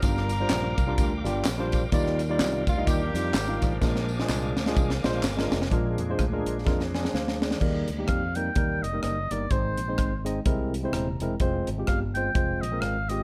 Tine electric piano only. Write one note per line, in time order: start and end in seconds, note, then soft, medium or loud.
0.03 0.74 G2 medium
0.03 0.31 G3 medium
0.03 0.31 D4 medium
0.03 0.31 F4 medium
0.03 0.31 A#4 medium
0.40 0.73 G3 medium
0.40 0.74 D4 medium
0.40 0.74 F4 medium
0.40 0.74 C5 medium
0.87 1.11 G3 medium
0.87 1.11 D4 medium
0.87 1.12 F4 medium
0.87 1.12 A#4 loud
1.24 1.45 G3 medium
1.24 1.45 D4 medium
1.24 1.45 F4 medium
1.24 1.46 G4 medium
1.58 1.82 G3 medium
1.58 1.83 D4 medium
1.58 1.83 F4 medium
1.58 1.83 C5 loud
1.93 2.64 D#3 medium
1.93 2.20 G3 medium
1.93 2.20 D#4 medium
1.93 2.21 F4 medium
1.93 2.21 D5 loud
2.29 2.62 G3 medium
2.29 2.63 D#4 medium
2.29 2.63 F4 medium
2.29 2.63 D5 loud
2.77 3.01 G3 medium
2.77 3.01 D#4 medium
2.77 3.01 F4 medium
2.77 3.02 D#5 medium
3.14 3.34 G3 medium
3.14 3.35 D#4 medium
3.14 3.35 F4 medium
3.14 3.35 A#4 medium
3.48 3.72 G3 medium
3.48 3.72 D#4 medium
3.48 3.72 F4 medium
3.48 3.72 F5 medium
3.81 4.53 A#2 medium
3.81 4.09 G#3 medium
3.81 4.09 D4 medium
3.81 4.10 F4 medium
3.81 4.10 A#4 medium
4.19 4.52 G#3 medium
4.19 4.52 D4 medium
4.19 4.53 F4 medium
4.19 4.53 G#4 medium
4.66 4.90 G#3 medium
4.66 4.90 D4 medium
4.66 4.91 F4 medium
4.66 4.91 G#4 medium
5.04 5.24 G#3 medium
5.04 5.24 D4 medium
5.04 5.24 F4 medium
5.04 5.24 C5 loud
5.37 5.61 G#3 medium
5.37 5.61 D4 medium
5.37 5.62 F4 medium
5.37 5.62 A#4 medium
5.72 6.43 A#2 medium
5.72 5.99 G#3 medium
5.72 5.99 D4 medium
5.72 5.99 F4 medium
5.72 6.00 A#4 medium
6.10 6.24 G#3 medium
6.10 6.24 D4 medium
6.10 6.24 F4 medium
6.10 6.24 C5 medium
6.32 6.56 G#3 medium
6.32 6.56 D4 medium
6.32 6.56 F4 medium
6.32 6.57 A#4 medium
6.66 6.82 G#3 medium
6.66 6.82 D4 medium
6.66 6.82 F4 medium
6.66 6.82 A#4 medium
6.95 7.13 D5 medium
6.95 7.13 G#5 medium
7.14 7.40 C5 medium
7.14 7.40 F5 medium
7.42 7.87 G#4 soft
7.42 7.87 D5 medium
7.60 8.32 D#3 medium
7.60 7.88 G3 medium
7.60 7.88 A#3 medium
7.60 7.88 D#4 medium
7.60 7.89 A#4 medium
7.98 8.22 G3 medium
7.98 8.22 A#3 medium
7.98 8.22 D#4 medium
7.98 8.23 G4 medium
8.35 8.49 G3 medium
8.35 8.49 A#3 medium
8.35 8.49 D#4 medium
8.35 8.50 A#4 medium
8.56 8.83 G3 medium
8.56 8.83 A#3 medium
8.56 8.84 D#4 medium
8.56 8.84 A#4 medium
8.93 9.17 G3 medium
8.93 9.17 A#3 medium
8.93 9.17 D#4 medium
8.93 9.17 A#4 medium
9.31 9.44 G3 medium
9.31 9.44 A#3 medium
9.31 9.45 D#4 medium
9.31 9.45 A#4 medium
9.51 10.22 G#2 medium
9.51 9.78 G#3 medium
9.51 9.79 C4 medium
9.51 9.79 D#4 medium
9.51 9.79 C5 medium
9.88 10.12 G#3 medium
9.88 10.12 C4 medium
9.88 10.12 D#4 medium
9.88 10.12 C5 medium
10.25 10.38 G#3 medium
10.25 10.39 C4 medium
10.25 10.39 D#4 medium
10.25 10.39 D#5 medium
10.45 11.17 C3 medium
10.45 10.73 G#3 medium
10.45 10.73 C4 medium
10.45 10.73 E4 medium
10.45 10.74 A#4 medium
10.83 11.07 G#3 medium
10.83 11.07 C4 medium
10.83 11.07 E4 medium
10.83 11.08 C5 medium
10.94 11.37 A#5 medium
11.21 11.34 G#3 medium
11.21 11.34 C4 medium
11.21 11.34 E4 medium
11.21 11.35 A#4 medium
11.41 11.68 G#3 medium
11.41 11.68 C4 medium
11.41 11.68 F4 medium
11.41 11.69 C5 medium
11.78 12.02 G#3 medium
11.78 12.02 C4 medium
11.78 12.02 F4 medium
11.78 12.02 G4 medium
12.16 12.29 G#3 medium
12.16 12.29 C4 medium
12.16 12.29 F4 medium
12.16 12.29 C5 medium
12.34 12.62 G#3 medium
12.34 12.63 C4 medium
12.34 12.63 F4 medium
12.34 12.63 C5 medium
12.72 12.96 G#3 medium
12.72 12.96 C4 medium
12.72 12.96 F4 medium
12.72 12.96 A#4 medium
13.10 13.23 G#3 medium
13.10 13.23 C4 medium
13.10 13.23 F4 medium
13.10 13.23 G4 medium